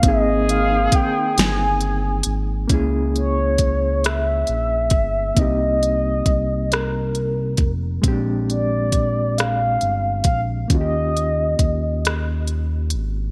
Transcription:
<<
  \new Staff \with { instrumentName = "Soft synth lead" } { \time 6/8 \key des \lydian \tempo 4. = 45 ees''8 f''8 g''8 aes''4 r8 | r8 des''4 fes''4. | ees''4. bes'4 r8 | r8 d''4 f''4 f''8 |
ees''2 r4 | }
  \new Staff \with { instrumentName = "Reed electric piano" } { \time 6/8 \key des \lydian <bes c' ees' aes'>2. | <bes des' fes' aes'>2. | <bes c' ees' g'>2. | <aes c' des' d' g'>2. |
<bes des' f' ges' g'>2. | }
  \new Staff \with { instrumentName = "Horn section" } { \time 6/8 \key des \lydian <ees c' aes'>2~ <ees c' aes'>8 r8 | r2. | r2. | r2. |
r2. | }
  \new Staff \with { instrumentName = "Analog synth bass" } { \clef bass \time 6/8 \key des \lydian aes,,4 r8 g,,4 aes,,8 | des,2 bes,,8 g,,8 | c,4 c,4. f,,8 | bes,,2 g,,8 bes,,8 |
ees,4 ees,4. aes,,8 | }
  \new DrumStaff \with { instrumentName = "Drums" } \drummode { \time 6/8 <hh bd>8 hh8 <hh bd>8 <hh sn>8 hh8 hh8 | <hh bd>8 hh8 <hh bd>8 <hh ss>8 hh8 <hh bd>8 | <hh bd>8 hh8 <hh bd>8 <hh ss>8 hh8 <hh bd>8 | <hh bd>8 hh8 <hh bd>8 <hh ss>8 hh8 <hh bd>8 |
<hh bd>8 hh8 <hh bd>8 <hh ss>8 hh8 hh8 | }
>>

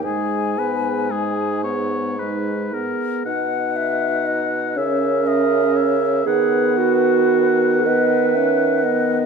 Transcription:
<<
  \new Staff \with { instrumentName = "Flute" } { \time 6/8 \key gis \minor \tempo 4. = 39 gis''4. r4. | \key b \major fis''8 e''8 dis''8 cis''8 e''8 cis''8 | b'4. dis''8 e''8 dis''8 | }
  \new Staff \with { instrumentName = "Oboe" } { \time 6/8 \key gis \minor gis'8 b'8 gis'8 cis''8 b'8 ais'8 | \key b \major fis''4. e''8 dis''8 e''8 | fis''2. | }
  \new Staff \with { instrumentName = "Clarinet" } { \time 6/8 \key gis \minor dis'8 gis'8 dis'8 gis'8 dis'8 gis'8 | \key b \major r4. ais'4. | gis'8 fis'4 b'4. | }
  \new Staff \with { instrumentName = "French horn" } { \time 6/8 \key gis \minor gis8 b8 gis8 b8 gis8 b8 | \key b \major dis'4. cis'4. | b4. b8 cis'8 b8 | }
  \new Staff \with { instrumentName = "Bassoon" } { \clef bass \time 6/8 \key gis \minor gis,2~ gis,8 r8 | \key b \major b,4. cis4. | dis2. | }
>>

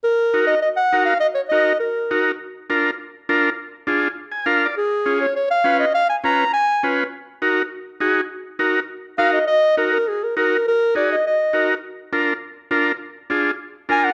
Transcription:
<<
  \new Staff \with { instrumentName = "Clarinet" } { \time 4/4 \key ees \minor \tempo 4 = 204 bes'4. ees''8 ees''8 ges''4 f''8 | ees''8 des''8 ees''4 bes'4. r8 | r1 | r1 |
aes'4. des''8 des''8 f''4 ees''8 | f''8 aes''8 bes''4 aes''4. r8 | r1 | r2. f''8 ees''8 |
ees''4 bes'8 bes'8 aes'8 bes'8 bes'4 | bes'4 d''8 ees''8 ees''4. r8 | r1 | r2. aes''8 ges''8 | }
  \new Staff \with { instrumentName = "Transistor combo organ" } { \time 4/4 \key ees \minor << { r1 | r1 | r1 | r2 r8 aes''8 \tuplet 3/2 { f''4 d''8 } |
r1 | r1 | r1 | r1 |
r1 | r1 | r1 | r1 | } \\ { r4 <ees' ges' bes'>8 r4. <ees' ges' bes'>8 r8 | r4 <ees' ges' bes'>8 r4. <ees' ges' bes'>8 r8 | r4 <d' f' bes'>8 r4. <d' f' bes'>8 r8 | r4 <d' f' aes'>8 r4. <d' f' bes'>8 r8 |
r4 <des' f' aes'>8 r4. <des' f' ces''>8 r8 | r4 <des' f' ces''>8 r4. <des' f' ces''>8 r8 | r4 <ees' ges' bes'>8 r4. <ees' ges' aes'>8 r8 | r4 <ees' ges' bes'>8 r4. <ees' ges' bes'>8 r8 |
r4 <ees' ges' bes'>8 r4. <ees' ges' bes'>8 r8 | r4 <ees' ges' aes'>8 r4. <ees' ges' bes'>8 r8 | r4 <d' f' bes'>8 r4. <d' f' bes'>8 r8 | r4 <d' f' aes'>8 r4. <d' f' bes'>8 r8 | } >> }
>>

